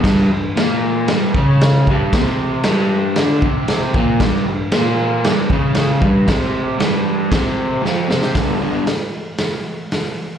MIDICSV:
0, 0, Header, 1, 3, 480
1, 0, Start_track
1, 0, Tempo, 519481
1, 46, Time_signature, 4, 2, 24, 8
1, 9591, End_track
2, 0, Start_track
2, 0, Title_t, "Overdriven electric guitar"
2, 0, Program_c, 0, 29
2, 19, Note_on_c, 0, 43, 94
2, 25, Note_on_c, 0, 55, 92
2, 266, Note_off_c, 0, 43, 0
2, 268, Note_off_c, 0, 55, 0
2, 287, Note_on_c, 0, 43, 70
2, 479, Note_off_c, 0, 43, 0
2, 518, Note_on_c, 0, 46, 100
2, 523, Note_on_c, 0, 58, 109
2, 995, Note_off_c, 0, 46, 0
2, 998, Note_off_c, 0, 58, 0
2, 998, Note_on_c, 0, 43, 90
2, 1007, Note_on_c, 0, 55, 110
2, 1235, Note_off_c, 0, 43, 0
2, 1240, Note_off_c, 0, 55, 0
2, 1253, Note_on_c, 0, 49, 97
2, 1259, Note_on_c, 0, 61, 105
2, 1723, Note_off_c, 0, 49, 0
2, 1726, Note_off_c, 0, 61, 0
2, 1743, Note_on_c, 0, 43, 97
2, 1755, Note_on_c, 0, 55, 106
2, 1968, Note_off_c, 0, 43, 0
2, 1968, Note_on_c, 0, 48, 80
2, 1971, Note_on_c, 0, 60, 92
2, 1974, Note_off_c, 0, 55, 0
2, 2441, Note_off_c, 0, 48, 0
2, 2442, Note_off_c, 0, 60, 0
2, 2454, Note_on_c, 0, 43, 104
2, 2465, Note_on_c, 0, 55, 116
2, 2924, Note_off_c, 0, 43, 0
2, 2929, Note_off_c, 0, 55, 0
2, 2930, Note_on_c, 0, 50, 96
2, 2940, Note_on_c, 0, 62, 109
2, 3162, Note_off_c, 0, 50, 0
2, 3167, Note_off_c, 0, 62, 0
2, 3178, Note_on_c, 0, 48, 95
2, 3182, Note_on_c, 0, 60, 115
2, 3646, Note_off_c, 0, 48, 0
2, 3648, Note_off_c, 0, 60, 0
2, 3654, Note_on_c, 0, 46, 88
2, 3660, Note_on_c, 0, 58, 106
2, 3884, Note_off_c, 0, 46, 0
2, 3885, Note_on_c, 0, 43, 86
2, 3887, Note_off_c, 0, 58, 0
2, 3894, Note_on_c, 0, 55, 90
2, 4117, Note_off_c, 0, 43, 0
2, 4124, Note_off_c, 0, 55, 0
2, 4128, Note_on_c, 0, 43, 79
2, 4320, Note_off_c, 0, 43, 0
2, 4362, Note_on_c, 0, 46, 98
2, 4377, Note_on_c, 0, 58, 122
2, 4838, Note_off_c, 0, 46, 0
2, 4845, Note_off_c, 0, 58, 0
2, 4846, Note_on_c, 0, 43, 100
2, 4850, Note_on_c, 0, 55, 99
2, 5080, Note_off_c, 0, 43, 0
2, 5082, Note_off_c, 0, 55, 0
2, 5088, Note_on_c, 0, 49, 108
2, 5100, Note_on_c, 0, 61, 110
2, 5549, Note_on_c, 0, 43, 112
2, 5555, Note_on_c, 0, 55, 108
2, 5561, Note_off_c, 0, 49, 0
2, 5567, Note_off_c, 0, 61, 0
2, 5787, Note_on_c, 0, 48, 85
2, 5791, Note_off_c, 0, 43, 0
2, 5794, Note_off_c, 0, 55, 0
2, 5798, Note_on_c, 0, 60, 83
2, 6269, Note_on_c, 0, 43, 96
2, 6270, Note_off_c, 0, 48, 0
2, 6275, Note_off_c, 0, 60, 0
2, 6283, Note_on_c, 0, 55, 106
2, 6748, Note_on_c, 0, 48, 94
2, 6751, Note_off_c, 0, 43, 0
2, 6758, Note_off_c, 0, 55, 0
2, 6762, Note_on_c, 0, 60, 110
2, 7219, Note_on_c, 0, 41, 85
2, 7230, Note_off_c, 0, 48, 0
2, 7231, Note_on_c, 0, 53, 110
2, 7238, Note_off_c, 0, 60, 0
2, 7461, Note_on_c, 0, 48, 83
2, 7466, Note_off_c, 0, 41, 0
2, 7471, Note_on_c, 0, 60, 123
2, 7472, Note_off_c, 0, 53, 0
2, 7707, Note_off_c, 0, 48, 0
2, 7709, Note_on_c, 0, 43, 73
2, 7712, Note_off_c, 0, 60, 0
2, 7713, Note_on_c, 0, 50, 80
2, 7720, Note_on_c, 0, 55, 91
2, 7726, Note_on_c, 0, 62, 83
2, 7730, Note_on_c, 0, 59, 74
2, 7911, Note_off_c, 0, 43, 0
2, 7913, Note_off_c, 0, 50, 0
2, 7916, Note_off_c, 0, 55, 0
2, 7919, Note_off_c, 0, 62, 0
2, 7921, Note_off_c, 0, 59, 0
2, 7941, Note_on_c, 0, 43, 96
2, 7948, Note_on_c, 0, 50, 100
2, 7954, Note_on_c, 0, 55, 96
2, 7961, Note_on_c, 0, 59, 116
2, 7967, Note_on_c, 0, 62, 105
2, 8147, Note_off_c, 0, 43, 0
2, 8150, Note_off_c, 0, 50, 0
2, 8153, Note_off_c, 0, 55, 0
2, 8157, Note_off_c, 0, 59, 0
2, 8159, Note_off_c, 0, 62, 0
2, 9591, End_track
3, 0, Start_track
3, 0, Title_t, "Drums"
3, 36, Note_on_c, 9, 36, 111
3, 41, Note_on_c, 9, 49, 69
3, 46, Note_on_c, 9, 38, 112
3, 128, Note_off_c, 9, 36, 0
3, 133, Note_off_c, 9, 49, 0
3, 139, Note_off_c, 9, 38, 0
3, 526, Note_on_c, 9, 49, 67
3, 531, Note_on_c, 9, 38, 119
3, 618, Note_off_c, 9, 49, 0
3, 624, Note_off_c, 9, 38, 0
3, 996, Note_on_c, 9, 49, 60
3, 1001, Note_on_c, 9, 38, 109
3, 1088, Note_off_c, 9, 49, 0
3, 1094, Note_off_c, 9, 38, 0
3, 1243, Note_on_c, 9, 36, 116
3, 1335, Note_off_c, 9, 36, 0
3, 1489, Note_on_c, 9, 49, 50
3, 1494, Note_on_c, 9, 38, 106
3, 1581, Note_off_c, 9, 49, 0
3, 1587, Note_off_c, 9, 38, 0
3, 1730, Note_on_c, 9, 36, 100
3, 1822, Note_off_c, 9, 36, 0
3, 1966, Note_on_c, 9, 49, 69
3, 1967, Note_on_c, 9, 36, 122
3, 1972, Note_on_c, 9, 38, 125
3, 2059, Note_off_c, 9, 49, 0
3, 2060, Note_off_c, 9, 36, 0
3, 2064, Note_off_c, 9, 38, 0
3, 2434, Note_on_c, 9, 49, 63
3, 2439, Note_on_c, 9, 38, 118
3, 2526, Note_off_c, 9, 49, 0
3, 2531, Note_off_c, 9, 38, 0
3, 2917, Note_on_c, 9, 49, 67
3, 2922, Note_on_c, 9, 38, 106
3, 3009, Note_off_c, 9, 49, 0
3, 3015, Note_off_c, 9, 38, 0
3, 3162, Note_on_c, 9, 36, 105
3, 3254, Note_off_c, 9, 36, 0
3, 3399, Note_on_c, 9, 49, 64
3, 3404, Note_on_c, 9, 38, 99
3, 3491, Note_off_c, 9, 49, 0
3, 3497, Note_off_c, 9, 38, 0
3, 3644, Note_on_c, 9, 36, 117
3, 3736, Note_off_c, 9, 36, 0
3, 3881, Note_on_c, 9, 36, 107
3, 3881, Note_on_c, 9, 49, 65
3, 3886, Note_on_c, 9, 38, 119
3, 3973, Note_off_c, 9, 49, 0
3, 3974, Note_off_c, 9, 36, 0
3, 3979, Note_off_c, 9, 38, 0
3, 4357, Note_on_c, 9, 49, 69
3, 4363, Note_on_c, 9, 38, 113
3, 4450, Note_off_c, 9, 49, 0
3, 4455, Note_off_c, 9, 38, 0
3, 4845, Note_on_c, 9, 49, 63
3, 4850, Note_on_c, 9, 38, 117
3, 4937, Note_off_c, 9, 49, 0
3, 4943, Note_off_c, 9, 38, 0
3, 5081, Note_on_c, 9, 36, 118
3, 5174, Note_off_c, 9, 36, 0
3, 5308, Note_on_c, 9, 49, 53
3, 5314, Note_on_c, 9, 38, 114
3, 5401, Note_off_c, 9, 49, 0
3, 5406, Note_off_c, 9, 38, 0
3, 5560, Note_on_c, 9, 36, 116
3, 5653, Note_off_c, 9, 36, 0
3, 5801, Note_on_c, 9, 36, 114
3, 5802, Note_on_c, 9, 49, 69
3, 5807, Note_on_c, 9, 38, 125
3, 5893, Note_off_c, 9, 36, 0
3, 5894, Note_off_c, 9, 49, 0
3, 5900, Note_off_c, 9, 38, 0
3, 6282, Note_on_c, 9, 49, 56
3, 6288, Note_on_c, 9, 38, 123
3, 6375, Note_off_c, 9, 49, 0
3, 6380, Note_off_c, 9, 38, 0
3, 6761, Note_on_c, 9, 36, 111
3, 6762, Note_on_c, 9, 49, 66
3, 6768, Note_on_c, 9, 38, 120
3, 6853, Note_off_c, 9, 36, 0
3, 6855, Note_off_c, 9, 49, 0
3, 6860, Note_off_c, 9, 38, 0
3, 7256, Note_on_c, 9, 38, 58
3, 7349, Note_off_c, 9, 38, 0
3, 7490, Note_on_c, 9, 38, 101
3, 7583, Note_off_c, 9, 38, 0
3, 7597, Note_on_c, 9, 38, 88
3, 7689, Note_off_c, 9, 38, 0
3, 7713, Note_on_c, 9, 46, 68
3, 7717, Note_on_c, 9, 36, 116
3, 7718, Note_on_c, 9, 38, 112
3, 7805, Note_off_c, 9, 46, 0
3, 7809, Note_off_c, 9, 36, 0
3, 7811, Note_off_c, 9, 38, 0
3, 8193, Note_on_c, 9, 46, 54
3, 8198, Note_on_c, 9, 38, 103
3, 8285, Note_off_c, 9, 46, 0
3, 8291, Note_off_c, 9, 38, 0
3, 8667, Note_on_c, 9, 46, 56
3, 8672, Note_on_c, 9, 38, 111
3, 8759, Note_off_c, 9, 46, 0
3, 8765, Note_off_c, 9, 38, 0
3, 9161, Note_on_c, 9, 46, 53
3, 9167, Note_on_c, 9, 38, 89
3, 9254, Note_off_c, 9, 46, 0
3, 9259, Note_off_c, 9, 38, 0
3, 9591, End_track
0, 0, End_of_file